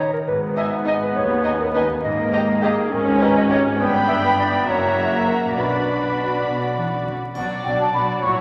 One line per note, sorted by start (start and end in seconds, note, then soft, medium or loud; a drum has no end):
0.00 0.10 A#1 medium
0.00 0.29 D#3 medium
0.00 0.20 D#4 soft
0.00 0.86 D#4 soft
0.00 0.30 G4 soft
0.00 0.29 A#4 soft
0.00 0.12 C#5 medium
0.00 0.20 D#5 soft
0.13 0.19 A#4 soft
0.27 1.01 G#1 medium
0.27 1.01 G#2 medium
0.27 2.03 G#2 medium
0.27 2.00 B3 medium
0.27 0.41 B4 medium
0.57 0.65 D#4 soft
0.57 2.07 G#4 soft
0.57 0.65 D#5 soft
0.57 0.70 E5 medium
0.57 0.66 G#5 soft
0.86 0.94 D#4 soft
0.86 1.44 D#4 soft
0.86 0.95 D#5 soft
0.86 0.94 D#5 medium
0.86 0.96 G#5 soft
1.02 1.18 B4 medium
1.16 1.89 D#2 medium
1.16 1.90 D#2 medium
1.16 1.66 C#4 soft
1.16 1.59 C#5 medium
1.44 1.53 D#4 soft
1.44 2.62 D#4 soft
1.44 1.52 D#5 soft
1.44 1.55 G#5 soft
1.59 1.66 A#4 medium
1.73 2.07 G#3 soft
1.73 1.84 D#4 soft
1.73 1.87 B4 medium
1.73 1.83 D#5 soft
1.73 1.84 G#5 soft
2.03 2.78 G#1 medium
2.03 2.78 G#2 medium
2.03 3.83 G#2 medium
2.03 2.90 A#3 medium
2.03 2.61 D#5 medium
2.33 4.37 G4 soft
2.33 2.42 G4 medium
2.33 2.41 D#5 medium
2.33 2.43 A#5 medium
2.62 3.20 D#4 soft
2.62 2.70 G4 medium
2.62 2.94 G#4 medium
2.62 2.71 D#5 medium
2.62 2.73 A#5 medium
2.91 3.65 G#1 medium
2.91 3.65 G#2 medium
2.91 3.78 C#4 medium
2.91 3.42 C#4 soft
2.91 3.23 A#4 medium
3.21 3.82 D#4 soft
3.21 3.29 G4 medium
3.21 3.36 B4 medium
3.21 3.29 D#5 medium
3.21 3.32 A#5 medium
3.38 3.44 D#5 medium
3.50 3.82 A#3 soft
3.50 3.58 G4 medium
3.50 3.64 C#5 medium
3.50 3.59 D#5 medium
3.50 3.61 A#5 soft
3.79 4.64 G1 medium
3.79 4.64 G2 medium
3.79 4.70 G2 medium
3.79 4.68 B3 medium
3.79 4.63 D4 medium
3.79 3.93 B4 medium
3.79 4.63 G5 medium
3.79 4.65 B5 medium
4.08 4.22 E5 medium
4.38 4.70 G4 soft
4.38 4.70 B4 soft
4.38 4.68 D5 medium
4.67 5.57 F#1 medium
4.67 5.59 F#2 medium
4.67 5.57 F#2 medium
4.67 5.55 A#3 medium
4.67 5.54 F#4 medium
4.67 5.30 C#5 medium
4.67 5.56 E5 medium
4.67 5.55 A#5 medium
4.97 5.58 A#3 soft
5.26 5.59 E4 soft
5.26 5.85 F#4 soft
5.26 5.56 A#4 medium
5.56 7.13 B1 soft
5.56 6.38 B2 soft
5.56 7.34 B2 soft
5.56 6.91 D4 soft
5.56 7.13 F#4 soft
5.56 6.44 B4 soft
5.56 7.13 D5 soft
5.56 7.16 B5 soft
5.87 7.93 F#4 soft
6.16 6.74 D4 soft
6.46 6.74 B2 soft
6.46 6.97 C#4 soft
6.75 6.84 E3 soft
6.75 7.93 D4 soft
7.05 7.14 D3 soft
7.05 7.64 B3 soft
7.34 7.44 B1 soft
7.34 8.26 B2 soft
7.34 7.43 B2 soft
7.34 7.64 F#3 soft
7.34 7.64 D4 soft
7.34 7.63 F#4 soft
7.34 7.63 D5 soft
7.34 8.20 D5 soft
7.34 7.62 F#5 soft
7.34 triangle soft
7.64 7.75 B1 soft
7.64 7.73 B2 soft
7.64 7.93 F#3 soft
7.64 8.26 B3 soft
7.64 7.94 D4 soft
7.64 7.93 F#4 soft
7.64 7.92 D5 soft
7.64 7.71 G5 medium
7.80 7.94 A5 medium
7.93 8.03 B1 soft
7.93 8.02 B2 soft
7.93 8.23 F#3 soft
7.93 8.26 D4 soft
7.93 8.24 D4 soft
7.93 8.23 F#4 soft
7.93 8.41 F#4 soft
7.93 8.23 D5 soft
7.93 8.01 B5 soft
8.23 8.32 A#1 soft
8.23 8.41 A#2 soft
8.23 8.32 A#2 soft
8.23 8.41 F#3 soft
8.23 8.41 E4 soft
8.23 8.41 F#4 soft
8.23 8.41 C#5 soft
8.23 8.41 C#5 medium
8.23 8.30 C#6 medium